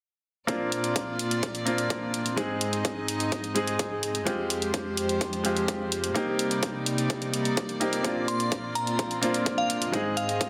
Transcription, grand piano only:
0.47 1.63 A#3 medium
0.47 1.64 C4 medium
0.47 1.64 D4 medium
0.47 1.64 F4 medium
1.65 2.34 A#3 medium
1.65 2.35 C4 medium
1.65 2.35 D4 medium
1.65 2.35 F4 medium
2.36 3.52 G#3 medium
2.36 3.53 C4 medium
2.36 3.53 D#4 medium
2.36 3.53 G#4 medium
3.55 4.23 G#3 medium
3.55 4.24 C4 medium
3.55 4.24 D#4 medium
3.55 4.24 G#4 medium
4.25 5.41 G#3 medium
4.25 5.42 C4 medium
4.25 5.42 F4 medium
4.25 5.42 G4 medium
5.44 6.12 G#3 medium
5.44 6.12 C4 medium
5.44 6.13 F4 medium
5.44 6.13 G4 medium
6.14 7.30 A#3 medium
6.14 7.31 C4 medium
6.14 7.31 D#4 medium
6.14 7.31 G4 medium
7.80 8.01 A#3 medium
7.80 8.02 C4 medium
7.80 8.02 D#4 medium
7.80 8.02 G4 medium
8.03 9.19 A#3 medium
8.03 9.20 C4 medium
8.03 9.20 D4 medium
8.03 9.20 F4 medium
9.21 9.90 A#3 medium
9.21 9.90 C4 medium
9.21 9.91 D4 medium
9.21 9.91 F4 medium
9.92 10.49 G#3 medium
9.92 10.49 C4 medium
9.92 10.49 D#4 medium
9.92 10.49 G#4 medium

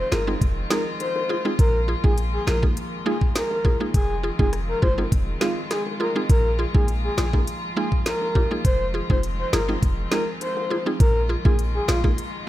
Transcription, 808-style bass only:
0.12 0.36 G1 medium
0.41 0.65 F1 loud
1.59 1.95 A#1 loud
2.04 2.39 A#1 loud
2.47 2.71 A#1 medium
3.94 4.31 F1 loud
4.39 4.74 F1 loud
4.83 5.06 G1 loud
5.12 5.36 F1 loud
6.30 6.66 A#1 loud
6.75 7.10 A#1 loud
7.18 7.42 A#1 medium
8.65 9.01 F1 loud
9.10 9.45 F1 loud
9.53 9.77 G1 medium
9.83 10.06 F1 loud
11.00 11.37 A#1 loud
11.45 11.80 A#1 loud
11.88 12.12 A#1 medium

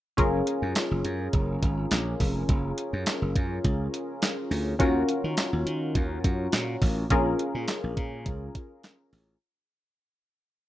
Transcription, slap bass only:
0.18 0.41 F#1 loud
0.62 0.73 F#2 medium
0.91 1.02 F#1 medium
1.05 1.27 F#2 loud
1.33 1.56 F#1 medium
1.63 1.85 G#1 loud
1.91 2.14 A#1 medium
2.20 2.43 F1 medium
2.49 2.71 F#1 loud
2.93 3.04 F#2 medium
3.22 3.32 F#1 medium
3.36 3.58 F#2 loud
3.65 3.87 C#2 medium
4.51 4.73 D2 medium
4.80 5.02 D#2 loud
5.24 5.35 D#3 medium
5.53 5.63 D#2 medium
5.66 5.97 D#3 loud
5.95 6.18 D#2 loud
6.24 6.47 F#2 loud
6.53 6.75 A#2 medium
6.82 7.04 A1 medium
7.11 7.33 A#1 loud
7.55 7.65 A#2 medium
7.84 7.94 A#1 medium
7.97 8.28 A#2 loud
8.26 8.48 C#2 medium
9.12 9.35 A1 medium

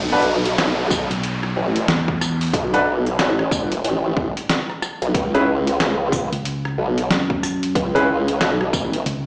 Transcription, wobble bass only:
0.00 0.56 B1 loud
0.58 1.08 B1 medium
1.56 1.87 A1 loud
2.54 3.17 B1 loud
3.19 3.82 A1 loud
3.84 4.34 A1 loud
5.02 5.13 B1 loud
5.14 5.78 C#2 loud
5.80 6.29 C#2 loud
6.78 7.08 B1 medium
7.75 8.39 C#2 loud
8.41 9.04 B1 loud

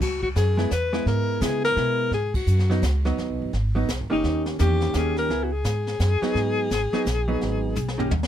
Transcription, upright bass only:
0.00 0.35 C#2 medium
0.36 0.70 F#2 loud
0.71 1.05 E2 medium
1.06 1.40 G#2 medium
1.41 1.75 C#3 loud
1.76 2.10 B2 medium
2.11 2.46 G#2 medium
2.47 2.81 F#2 loud
2.82 3.16 C#2 medium
3.17 3.29 D#2 medium
3.29 3.41 B1 medium
3.42 3.52 G#1 medium
3.53 3.87 G#1 medium
3.89 4.00 B1 medium
4.00 4.12 G#1 soft
4.12 4.23 F#1 medium
4.24 4.58 D#2 medium
4.60 4.93 E2 loud
4.94 5.28 D#2 medium
5.29 5.63 C#2 medium
5.64 5.99 G#2 loud
6.00 6.20 F#2 medium
6.22 muted upright bass stroke soft
6.35 6.69 G#2 medium
6.70 6.91 G#1 medium
6.92 muted upright bass stroke soft
7.05 7.40 A#1 medium
7.41 7.75 G#1 medium
7.76 8.10 B1 loud
8.11 8.27 D#2 medium

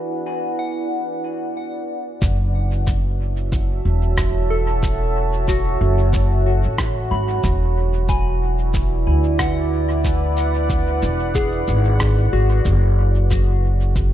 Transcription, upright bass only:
2.22 3.82 F#1 loud
3.85 5.78 E1 medium
5.81 6.62 F#1 loud
6.66 7.09 A1 medium
7.11 7.41 G#1 medium
7.44 9.04 E1 loud
9.07 11.00 D2 medium
11.03 11.67 E1 loud
11.68 12.30 G#1 medium
12.33 12.62 G#1 medium
12.65 14.13 F#1 loud

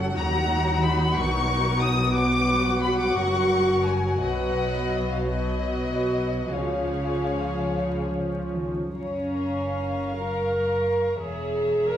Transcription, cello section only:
0.00 0.17 F#2 medium
0.17 1.16 D#2 medium
1.18 3.16 B2 medium
3.17 4.19 F#2 medium
4.22 6.48 B2 medium
6.51 7.64 C#3 medium
7.75 8.12 C#3 medium
8.16 8.55 F3 medium
8.56 8.96 D#3 medium
8.95 11.17 F#2 medium
11.21 11.97 E2 medium

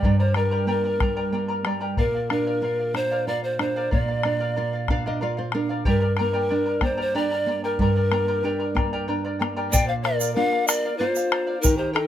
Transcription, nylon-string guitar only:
0.05 1.94 G2 medium
0.35 0.67 G3 soft
0.67 0.99 A#3 soft
1.00 1.32 G3 soft
1.33 1.64 A#3 soft
1.65 1.97 G3 soft
1.98 3.88 A#2 medium
2.30 2.62 D4 soft
2.62 2.94 F4 medium
2.94 3.26 D4 soft
3.27 3.59 F4 soft
3.59 3.91 D4 medium
3.92 5.82 A#2 medium
4.25 4.56 D4 soft
4.58 4.88 F4 medium
4.90 5.21 D4 soft
4.90 5.05 F5 medium
5.07 5.21 D#5 medium
5.22 5.53 F4 soft
5.22 5.37 D5 medium
5.38 5.53 C5 medium
5.55 5.86 D4 medium
5.55 5.84 A#4 medium
5.87 7.76 G2 medium
6.20 6.50 A#3 medium
6.51 6.82 D4 medium
6.82 7.13 A#3 soft
7.15 7.46 D4 soft
7.46 7.78 A#3 medium
7.79 9.68 G2 medium
8.11 8.43 A#3 soft
8.44 8.75 D4 soft
8.75 9.06 A#3 soft
9.08 9.39 D4 soft
9.41 9.71 A#3 soft
9.72 10.34 A#2 medium
10.36 10.88 A#3 medium
10.36 10.87 D4 soft
10.36 10.88 F4 medium
11.00 11.51 A#3 soft
11.00 11.51 D4 soft
11.00 11.52 F4 medium
11.64 12.07 D#3 medium

